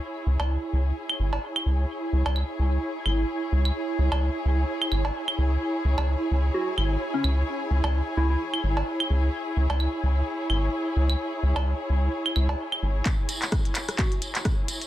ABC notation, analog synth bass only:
X:1
M:4/4
L:1/16
Q:"Swing 16ths" 1/4=129
K:C#m
V:1 name="Analog synth bass" clef=bass
z2 C,, C,,2 z C,,2 z2 G,,,2 z2 C,,2 | z2 C,, C,,2 z C,,2 z2 G,,,2 z2 C,,2 | z2 C,, C,,2 z C,,2 z2 G,,,2 z2 C,,2 | z2 C,, C,,2 z C,,2 z2 G,,,2 z2 C,,2 |
z2 C,, C,,2 z C,,2 z2 G,,,2 z2 C,,2 | z2 C,, C,,2 z C,,2 z2 G,,,2 z2 C,,2 | z2 C,, C,,2 z C,,2 z2 C,,2 z2 G,,,2 | z16 |]